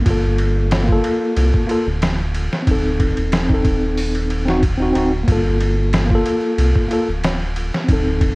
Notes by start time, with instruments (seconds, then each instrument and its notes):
0.01 tine electric piano A#3
0.06 analog synth bass G1, tine electric piano F4, kick, ride
0.10 tine electric piano A4
0.38 ride
0.71 snare, ride
0.84 tine electric piano A#3
0.88 tine electric piano F4, kick
0.92 tine electric piano A4
1.04 ride
1.36 analog synth bass C2, ride
1.54 kick
1.67 tine electric piano A#3 F4, ride
1.71 tine electric piano A4
1.86 analog synth bass D1
2.02 snare, ride
2.35 ride
2.53 snare
2.63 tine electric piano C4
2.67 analog synth bass D1, tine electric piano D#4, kick, ride
2.71 tine electric piano A4
3.00 kick, ride
3.17 analog synth bass D#1, ride
3.32 snare, ride
3.45 tine electric piano C4
3.49 tine electric piano D#4, kick
3.54 tine electric piano A4
3.65 kick, ride
3.98 open hi-hat
4.15 ride
4.30 ride
4.45 tine electric piano C4 D#4, snare
4.50 tine electric piano F#4
4.63 kick, ride
4.78 tine electric piano C4 D#4
4.82 tine electric piano F#4
4.93 analog synth bass D1, tine electric piano C4 D#4, ride
4.98 tine electric piano F#4
5.23 tine electric piano A#3
5.28 analog synth bass G1, tine electric piano F4, kick, ride
5.32 tine electric piano A4
5.61 ride
5.93 snare, ride
6.06 tine electric piano A#3, kick
6.11 tine electric piano F4
6.15 tine electric piano A4
6.26 ride
6.58 analog synth bass C2, ride
6.76 kick
6.88 tine electric piano A#3 F4, ride
6.93 tine electric piano A4
7.08 analog synth bass D1
7.23 snare, ride
7.56 ride
7.74 snare
7.84 tine electric piano C4
7.88 analog synth bass D1, tine electric piano D#4, kick, ride
7.93 tine electric piano A4
8.21 kick, ride